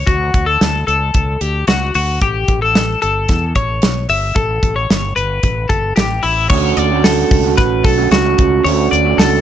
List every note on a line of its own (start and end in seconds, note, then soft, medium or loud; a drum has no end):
0.07 0.30 D2 medium
0.07 0.45 F#4 medium
0.07 kick loud
0.07 closed hi-hat medium
0.34 0.57 D2 medium
0.34 kick medium
0.34 closed hi-hat medium
0.46 0.85 A4 medium
0.61 0.84 D2 medium
0.61 snare medium
0.61 closed hi-hat medium
0.87 1.10 C#2 medium
0.87 1.41 A4 medium
0.87 closed hi-hat medium
1.14 1.37 C#2 medium
1.14 kick medium
1.14 closed hi-hat medium
1.41 1.64 D2 medium
1.41 1.67 G4 medium
1.41 closed hi-hat medium
1.67 1.91 C#2 medium
1.67 1.94 F#4 medium
1.67 snare loud
1.67 closed hi-hat medium
1.94 2.18 D2 medium
1.94 2.21 F#4 medium
1.94 open hi-hat medium
2.21 2.45 A1 medium
2.21 2.60 G4 medium
2.21 kick loud
2.21 closed hi-hat medium
2.48 2.94 A1 medium
2.48 kick medium
2.48 closed hi-hat medium
2.62 3.00 A4 medium
2.75 snare loud
2.75 closed hi-hat medium
3.02 3.26 G1 medium
3.02 3.53 A4 medium
3.02 closed hi-hat medium
3.28 3.52 E2 medium
3.28 kick medium
3.28 snare soft
3.28 closed hi-hat medium
3.55 3.79 A1 medium
3.55 4.06 C#5 medium
3.55 kick medium
3.55 closed hi-hat medium
3.82 4.06 B1 medium
3.82 snare loud
3.82 closed hi-hat medium
4.09 4.32 G1 medium
4.09 4.37 E5 medium
4.09 open hi-hat medium
4.36 4.59 A1 medium
4.36 4.74 A4 medium
4.36 kick loud
4.36 closed hi-hat medium
4.63 4.86 A1 medium
4.63 kick medium
4.63 closed hi-hat medium
4.76 5.14 C#5 medium
4.90 5.13 G1 medium
4.90 snare medium
4.90 closed hi-hat medium
5.16 5.40 G1 medium
5.16 5.67 B4 medium
5.16 closed hi-hat medium
5.43 5.66 A1 medium
5.43 kick medium
5.43 closed hi-hat medium
5.69 5.93 G1 medium
5.69 5.95 A4 medium
5.69 kick medium
5.69 closed hi-hat medium
5.96 6.20 A1 medium
5.96 6.23 G4 medium
5.96 snare loud
5.96 closed hi-hat medium
6.23 6.47 A1 medium
6.23 6.49 E4 medium
6.23 open hi-hat medium
6.50 6.73 D2 loud
6.50 6.91 D3 medium
6.50 6.91 A3 medium
6.50 6.91 C#4 medium
6.50 6.90 F#4 medium
6.50 6.77 C#5 medium
6.50 kick loud
6.50 crash medium
6.77 7.23 D2 loud
6.77 7.04 D5 medium
6.77 hi-hat pedal medium
6.77 open hi-hat medium
6.91 7.49 D3 medium
6.91 7.46 A3 medium
6.91 7.44 C#4 medium
6.91 7.43 F#4 medium
7.04 7.55 A4 medium
7.04 snare loud
7.04 hi-hat pedal medium
7.04 open hi-hat medium
7.31 7.54 C#2 medium
7.31 kick loud
7.31 hi-hat pedal medium
7.31 open hi-hat medium
7.44 7.98 A3 soft
7.44 7.97 C#4 medium
7.44 7.96 F#4 medium
7.57 7.81 A1 medium
7.57 7.85 B4 medium
7.57 kick loud
7.57 snare soft
7.57 hi-hat pedal medium
7.57 open hi-hat medium
7.84 8.07 B1 medium
7.84 8.11 A4 medium
7.84 kick loud
7.84 hi-hat pedal medium
7.84 open hi-hat medium
7.98 8.26 D3 medium
7.98 8.25 A3 medium
7.98 8.24 C#4 medium
7.98 8.22 F#4 medium
8.11 8.34 C#2 medium
8.11 8.62 F#4 medium
8.11 snare loud
8.11 hi-hat pedal medium
8.11 open hi-hat medium
8.24 8.64 A3 soft
8.24 8.65 C#4 medium
8.24 8.65 F#4 medium
8.38 8.61 C#2 loud
8.38 kick medium
8.38 hi-hat pedal medium
8.38 open hi-hat medium
8.64 8.88 D2 loud
8.64 9.05 D3 medium
8.64 9.05 A3 medium
8.64 9.05 C#4 medium
8.64 9.04 F#4 medium
8.64 8.91 C#5 medium
8.64 hi-hat pedal medium
8.64 open hi-hat medium
8.91 9.15 D2 loud
8.91 9.18 D5 medium
8.91 hi-hat pedal medium
8.91 open hi-hat medium
9.05 9.41 D3 medium
9.05 9.41 A3 medium
9.05 9.41 C#4 medium
9.05 9.41 F#4 medium
9.18 9.41 C#2 medium
9.18 9.41 A4 medium
9.18 snare loud
9.18 hi-hat pedal medium
9.18 open hi-hat medium